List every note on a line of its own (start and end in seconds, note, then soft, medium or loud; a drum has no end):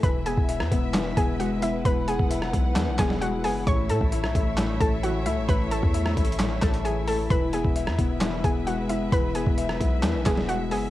0.03 0.36 E1 loud
0.03 0.93 E3 loud
0.03 3.63 G#3 medium
0.03 10.90 E4 medium
0.03 3.63 B4 medium
0.03 0.23 B4 medium
0.03 1.83 E5 medium
0.03 0.23 B5 loud
0.03 kick loud
0.03 closed hi-hat medium
0.26 0.70 B3 medium
0.26 1.13 G#4 medium
0.26 1.13 G#5 medium
0.26 closed hi-hat medium
0.37 0.62 E1 loud
0.37 kick medium
0.49 1.62 E5 loud
0.49 closed hi-hat medium
0.60 0.71 E2 loud
0.60 cross-stick medium
0.71 1.15 E1 loud
0.71 1.15 B3 medium
0.71 kick medium
0.71 closed hi-hat medium
0.94 1.84 E3 medium
0.94 snare loud
0.94 clap medium
0.94 closed hi-hat medium
1.17 1.82 E1 loud
1.17 1.61 B3 medium
1.17 1.37 G#4 medium
1.17 1.37 G#5 medium
1.17 kick loud
1.17 closed hi-hat medium
1.40 2.53 G#3 medium
1.40 1.60 F#4 medium
1.40 1.59 F#5 medium
1.40 closed hi-hat medium
1.62 2.06 B3 medium
1.62 1.83 E4 medium
1.62 1.82 E5 medium
1.62 closed hi-hat medium
1.85 2.18 E1 loud
1.85 2.75 E3 loud
1.85 2.05 B4 medium
1.85 3.65 F#5 medium
1.85 2.05 B5 loud
1.85 kick loud
1.85 closed hi-hat medium
2.08 2.52 B3 medium
2.08 2.95 G#4 medium
2.08 2.95 G#5 medium
2.08 closed hi-hat medium
2.19 2.52 E1 loud
2.19 kick medium
2.31 3.44 E5 loud
2.31 closed hi-hat medium
2.42 cross-stick medium
2.53 2.78 B1 loud
2.53 2.97 B3 medium
2.53 kick medium
2.53 closed hi-hat medium
2.76 2.89 E2 loud
2.76 3.67 E3 medium
2.76 snare loud
2.76 clap medium
2.76 closed hi-hat medium
2.87 2.98 B1 loud
2.98 3.46 E1 loud
2.98 3.43 B3 medium
2.98 3.19 G#4 medium
2.98 3.19 G#5 medium
2.98 kick loud
2.98 snare loud
2.98 clap medium
2.98 closed hi-hat medium
3.10 snare medium
3.21 3.67 G#3 loud
3.21 3.42 F#4 medium
3.21 3.41 F#5 medium
3.21 closed hi-hat medium
3.44 3.66 F#1 loud
3.44 3.67 B3 medium
3.44 3.65 G#4 medium
3.44 3.64 G#5 medium
3.44 open hi-hat medium
3.67 3.91 A1 loud
3.67 4.56 A2 loud
3.67 7.27 A3 medium
3.67 7.27 C#5 medium
3.67 3.87 C#5 medium
3.67 7.27 E5 medium
3.67 3.87 C#6 loud
3.67 kick loud
3.67 closed hi-hat medium
3.90 4.00 A2 loud
3.90 4.34 A3 medium
3.90 4.77 A4 medium
3.90 4.77 A5 medium
3.90 closed hi-hat medium
4.01 4.25 A1 loud
4.01 kick medium
4.12 5.26 E4 loud
4.12 closed hi-hat medium
4.24 4.35 B1 loud
4.24 cross-stick medium
4.35 4.79 A1 loud
4.35 4.79 A3 medium
4.35 kick medium
4.35 closed hi-hat medium
4.57 5.47 A2 medium
4.57 snare loud
4.57 clap medium
4.57 closed hi-hat medium
4.80 5.27 A1 loud
4.80 5.24 A3 medium
4.80 5.01 A4 medium
4.80 5.00 A5 medium
4.80 kick loud
4.80 closed hi-hat medium
5.03 6.17 E3 medium
5.03 5.24 F#4 medium
5.03 5.23 F#5 medium
5.03 closed hi-hat medium
5.26 5.39 C#2 loud
5.26 5.70 A3 medium
5.26 5.46 E4 medium
5.26 5.46 E5 medium
5.26 closed hi-hat medium
5.37 5.48 A1 loud
5.48 5.81 A1 loud
5.48 6.38 A2 medium
5.48 5.69 B4 medium
5.48 5.68 B5 loud
5.48 kick loud
5.48 closed hi-hat medium
5.71 6.15 A3 medium
5.71 6.59 A4 medium
5.71 6.58 A5 medium
5.71 closed hi-hat medium
5.83 6.16 E2 loud
5.83 kick medium
5.94 7.08 E4 loud
5.94 closed hi-hat medium
6.06 cross-stick medium
6.17 6.61 A1 loud
6.17 6.61 A3 medium
6.17 kick medium
6.17 closed hi-hat medium
6.25 closed hi-hat medium
6.32 closed hi-hat medium
6.39 7.31 A2 medium
6.39 snare loud
6.39 clap medium
6.39 closed hi-hat medium
6.62 7.28 A1 loud
6.62 7.06 A3 medium
6.62 6.82 A4 medium
6.62 6.82 A5 medium
6.62 kick loud
6.62 snare medium
6.62 clap medium
6.62 closed hi-hat medium
6.74 closed hi-hat soft
6.85 7.29 E3 medium
6.85 7.05 G#4 medium
6.85 7.05 G#5 loud
6.85 closed hi-hat medium
7.08 7.31 A3 medium
7.08 7.28 A4 medium
7.08 7.28 A5 medium
7.08 open hi-hat medium
7.30 7.63 E1 loud
7.30 8.20 E3 medium
7.30 10.90 G#3 medium
7.30 10.90 B4 medium
7.30 7.51 B4 medium
7.30 10.90 E5 medium
7.30 7.50 B5 medium
7.30 kick loud
7.30 closed hi-hat medium
7.53 7.97 B3 medium
7.53 8.41 G#4 medium
7.53 8.40 G#5 medium
7.53 closed hi-hat medium
7.65 7.89 E1 loud
7.65 kick medium
7.76 8.90 E5 medium
7.76 closed hi-hat medium
7.87 7.98 E2 loud
7.87 cross-stick medium
7.99 8.42 E1 loud
7.99 8.43 B3 medium
7.99 kick medium
7.99 closed hi-hat medium
8.21 9.11 E3 medium
8.21 snare loud
8.21 clap medium
8.21 closed hi-hat medium
8.44 9.10 E1 loud
8.44 8.88 B3 medium
8.44 8.64 G#4 medium
8.44 8.64 G#5 medium
8.44 kick loud
8.44 closed hi-hat medium
8.67 9.81 G#3 loud
8.67 8.87 F#4 medium
8.67 8.87 F#5 medium
8.67 closed hi-hat medium
8.89 9.33 B3 medium
8.89 9.10 E4 medium
8.89 9.09 E5 medium
8.89 closed hi-hat medium
9.12 9.45 E1 loud
9.12 10.02 E3 loud
9.12 9.33 B4 medium
9.12 9.32 B5 loud
9.12 kick loud
9.12 closed hi-hat medium
9.35 9.79 B3 medium
9.35 10.22 G#4 medium
9.35 10.22 G#5 medium
9.35 closed hi-hat medium
9.47 9.79 E1 loud
9.47 kick medium
9.58 10.71 E5 loud
9.58 closed hi-hat medium
9.69 cross-stick medium
9.80 10.05 B1 loud
9.80 10.24 B3 medium
9.80 kick medium
9.80 closed hi-hat medium
10.03 10.16 E2 loud
10.03 10.90 E3 medium
10.03 snare loud
10.03 clap medium
10.03 closed hi-hat medium
10.15 10.25 B1 loud
10.26 10.73 E1 loud
10.26 10.70 B3 medium
10.26 10.46 G#4 medium
10.26 10.46 G#5 medium
10.26 kick loud
10.26 snare loud
10.26 clap medium
10.26 closed hi-hat medium
10.37 snare medium
10.49 10.90 G#3 loud
10.49 10.69 F#4 medium
10.49 10.68 F#5 medium
10.49 closed hi-hat medium
10.71 10.90 F#1 loud
10.71 10.90 B3 medium
10.71 10.90 G#4 medium
10.71 10.90 G#5 medium
10.71 open hi-hat medium